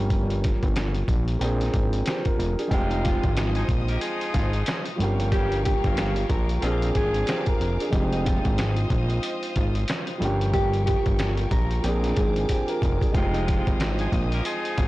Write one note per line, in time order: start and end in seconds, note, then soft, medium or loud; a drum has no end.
0.00 0.53 G1 loud
0.00 1.36 F3 medium
0.00 1.37 G3 medium
0.00 1.38 A#3 medium
0.00 1.38 C#4 medium
0.00 1.39 G4 medium
0.10 kick loud
0.10 closed hi-hat medium
0.30 closed hi-hat medium
0.44 kick loud
0.44 snare soft
0.44 closed hi-hat medium
0.63 1.04 G1 medium
0.63 kick medium
0.63 closed hi-hat soft
0.76 snare loud
0.76 closed hi-hat medium
0.95 closed hi-hat medium
1.08 1.37 A#1 medium
1.08 kick loud
1.08 closed hi-hat medium
1.28 closed hi-hat medium
1.38 1.70 A#1 loud
1.38 2.66 F3 medium
1.38 2.68 A#3 medium
1.38 2.69 C4 medium
1.38 closed hi-hat medium
1.43 2.06 D4 medium
1.43 2.07 G#4 medium
1.61 snare soft
1.61 closed hi-hat medium
1.74 2.03 G#1 medium
1.74 kick medium
1.74 closed hi-hat medium
1.93 closed hi-hat medium
2.06 2.25 G4 medium
2.06 2.25 C5 medium
2.06 snare loud
2.06 snare medium
2.06 closed hi-hat loud
2.25 2.57 F4 medium
2.25 2.57 A#4 medium
2.25 kick medium
2.25 closed hi-hat medium
2.38 2.56 F1 medium
2.38 closed hi-hat medium
2.59 2.90 D4 medium
2.59 2.89 G#4 medium
2.59 closed hi-hat medium
2.67 3.18 F1 loud
2.67 4.93 F3 medium
2.67 4.94 G#3 medium
2.67 4.95 C4 medium
2.67 4.97 D#5 medium
2.67 13.11 F5 medium
2.67 kick loud
2.71 3.33 C3 loud
2.71 3.33 G#3 loud
2.71 4.96 D#4 medium
2.71 3.33 F4 loud
2.71 4.97 G4 medium
2.71 4.97 C5 medium
2.71 4.97 D#6 medium
2.71 closed hi-hat medium
2.90 3.02 D#4 medium
2.90 closed hi-hat medium
3.04 3.53 F4 medium
3.04 kick loud
3.04 snare soft
3.04 closed hi-hat medium
3.23 3.64 G#1 medium
3.23 kick medium
3.23 closed hi-hat medium
3.37 snare loud
3.37 closed hi-hat medium
3.55 3.67 F3 medium
3.55 3.67 D#4 medium
3.55 3.67 G#4 medium
3.55 closed hi-hat medium
3.69 3.98 A#1 loud
3.69 kick loud
3.69 closed hi-hat medium
3.88 4.00 A#3 medium
3.88 4.00 G4 medium
3.88 4.00 A#4 medium
3.88 closed hi-hat medium
4.01 4.82 F3 loud
4.01 4.82 D#4 loud
4.01 4.82 G#4 loud
4.01 closed hi-hat loud
4.21 closed hi-hat medium
4.34 4.64 G#1 loud
4.34 4.51 F4 medium
4.34 kick loud
4.34 closed hi-hat medium
4.53 closed hi-hat medium
4.66 snare loud
4.66 snare medium
4.66 closed hi-hat loud
4.85 closed hi-hat medium
4.96 5.75 G1 loud
4.96 6.58 F3 medium
4.96 6.58 G3 medium
4.96 6.59 A#3 medium
4.96 6.61 A#4 medium
4.96 6.61 G5 medium
4.96 6.61 C#6 medium
5.00 6.60 C#4 medium
5.00 6.61 G4 medium
5.00 closed hi-hat medium
5.20 closed hi-hat medium
5.32 5.58 C#3 loud
5.32 5.58 A#3 loud
5.32 5.61 G4 loud
5.32 5.58 G4 loud
5.32 kick loud
5.32 closed hi-hat medium
5.52 closed hi-hat medium
5.65 6.26 G4 medium
5.65 kick loud
5.65 snare soft
5.65 closed hi-hat medium
5.84 6.25 G1 medium
5.84 6.28 C#3 medium
5.84 6.28 A#3 medium
5.84 6.28 F4 medium
5.84 kick medium
5.84 closed hi-hat medium
5.97 snare loud
5.97 closed hi-hat medium
6.16 closed hi-hat medium
6.29 6.59 A#1 loud
6.29 6.91 A#4 medium
6.29 kick loud
6.29 closed hi-hat medium
6.49 closed hi-hat medium
6.59 6.92 A#1 loud
6.59 6.88 D3 medium
6.59 7.88 F3 medium
6.59 7.90 A#3 medium
6.59 6.88 A#3 medium
6.59 7.90 C4 medium
6.59 6.88 F4 loud
6.59 closed hi-hat loud
6.64 7.27 D4 medium
6.64 7.28 G#4 medium
6.64 7.92 A#4 medium
6.64 7.92 G#5 medium
6.64 7.92 D6 medium
6.82 closed hi-hat medium
6.95 7.24 G#1 medium
6.95 7.44 F3 medium
6.95 7.44 D4 medium
6.95 7.89 G#4 medium
6.95 7.44 G#4 loud
6.95 kick medium
6.95 closed hi-hat medium
7.14 closed hi-hat medium
7.27 7.47 G4 medium
7.27 7.46 C5 medium
7.27 snare loud
7.27 snare medium
7.27 closed hi-hat loud
7.46 7.79 F4 medium
7.46 7.78 A#4 medium
7.46 kick medium
7.46 closed hi-hat medium
7.60 7.78 F1 medium
7.60 closed hi-hat medium
7.80 8.11 D4 medium
7.80 8.11 G#4 medium
7.80 closed hi-hat medium
7.89 8.39 F1 loud
7.89 10.15 F3 medium
7.89 10.16 G#3 medium
7.89 10.17 C4 medium
7.89 kick loud
7.89 closed hi-hat medium
7.93 10.18 D#4 medium
7.93 10.19 G4 medium
7.93 10.19 C5 medium
7.93 10.19 D#5 medium
7.93 10.19 D#6 medium
8.12 8.24 D#4 medium
8.12 closed hi-hat medium
8.26 8.74 F4 medium
8.26 kick loud
8.26 snare soft
8.26 closed hi-hat medium
8.45 8.86 G#1 medium
8.45 kick medium
8.45 closed hi-hat medium
8.58 snare loud
8.58 closed hi-hat medium
8.77 closed hi-hat medium
8.90 9.20 A#1 medium
8.90 kick loud
8.90 closed hi-hat medium
9.10 closed hi-hat medium
9.23 closed hi-hat loud
9.43 closed hi-hat medium
9.56 9.85 G#1 loud
9.56 9.74 F4 medium
9.56 kick loud
9.56 closed hi-hat medium
9.75 closed hi-hat medium
9.88 snare loud
9.88 snare medium
9.88 closed hi-hat loud
10.07 closed hi-hat medium
10.18 10.97 G1 loud
10.18 11.79 F3 medium
10.18 11.80 G3 medium
10.18 11.81 A#3 medium
10.18 13.11 A#4 medium
10.18 11.82 G5 medium
10.18 11.82 C#6 medium
10.18 closed hi-hat medium
10.23 11.82 C#4 medium
10.23 11.83 G4 medium
10.41 closed hi-hat medium
10.53 10.83 G4 loud
10.53 kick loud
10.53 closed hi-hat medium
10.73 closed hi-hat medium
10.86 11.47 G4 medium
10.86 kick loud
10.86 snare soft
10.86 closed hi-hat medium
11.06 11.47 G1 medium
11.06 kick medium
11.06 closed hi-hat medium
11.19 snare loud
11.19 closed hi-hat medium
11.37 closed hi-hat medium
11.51 11.80 A#1 medium
11.51 12.13 A#4 medium
11.51 kick loud
11.51 closed hi-hat medium
11.71 closed hi-hat medium
11.81 12.13 A#1 loud
11.81 13.09 F3 medium
11.81 13.11 A#3 medium
11.81 13.12 C4 medium
11.81 13.13 G#5 medium
11.81 13.13 D6 medium
11.81 closed hi-hat loud
11.86 12.49 D4 medium
11.86 12.50 G#4 medium
12.04 snare soft
12.04 closed hi-hat medium
12.16 12.46 G#1 medium
12.16 13.11 G#4 medium
12.16 kick loud
12.16 closed hi-hat medium
12.36 closed hi-hat medium
12.49 12.68 G4 medium
12.49 12.68 C5 medium
12.49 kick medium
12.49 closed hi-hat loud
12.68 13.00 F4 medium
12.68 13.00 A#4 medium
12.68 closed hi-hat medium
12.82 12.99 F1 loud
12.82 kick loud
12.82 closed hi-hat medium
13.01 13.33 D4 medium
13.01 13.33 G#4 medium
13.01 kick medium
13.01 closed hi-hat medium
13.11 13.61 F1 loud
13.11 14.88 F3 medium
13.11 14.88 G#3 medium
13.11 14.88 C4 medium
13.11 14.88 C5 medium
13.11 14.88 D#5 medium
13.11 14.88 F5 medium
13.11 14.88 D#6 medium
13.11 kick loud
13.11 closed hi-hat medium
13.16 13.77 C3 loud
13.16 13.77 G#3 loud
13.16 14.88 D#4 medium
13.16 13.77 F4 loud
13.16 14.88 G4 medium
13.33 13.46 D#4 medium
13.33 closed hi-hat medium
13.48 13.96 F4 medium
13.48 kick loud
13.48 snare soft
13.48 closed hi-hat medium
13.67 14.08 G#1 medium
13.67 kick medium
13.67 closed hi-hat medium
13.80 snare loud
13.80 closed hi-hat medium
13.99 14.10 F3 medium
13.99 14.10 D#4 medium
13.99 14.10 G#4 medium
13.99 closed hi-hat medium
14.12 14.42 A#1 medium
14.12 kick loud
14.12 closed hi-hat medium
14.32 14.43 A#3 medium
14.32 14.43 G4 medium
14.32 14.43 A#4 medium
14.32 closed hi-hat medium
14.45 14.88 F3 loud
14.45 14.88 D#4 loud
14.45 14.88 G#4 loud
14.45 closed hi-hat loud
14.65 closed hi-hat medium
14.77 14.88 G#1 loud
14.77 14.88 F4 medium
14.77 kick loud
14.77 closed hi-hat medium